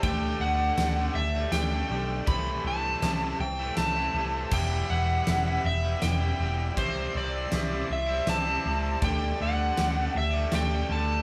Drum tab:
CC |------|------|x-----|------|
RD |x-x-x-|x-x-x-|--x-x-|x-x-x-|
SD |--o-o-|--o-o-|--o-o-|--o-o-|
BD |o-----|o-----|o-----|o-----|

CC |------|
RD |x-x-x-|
SD |--o-o-|
BD |o-----|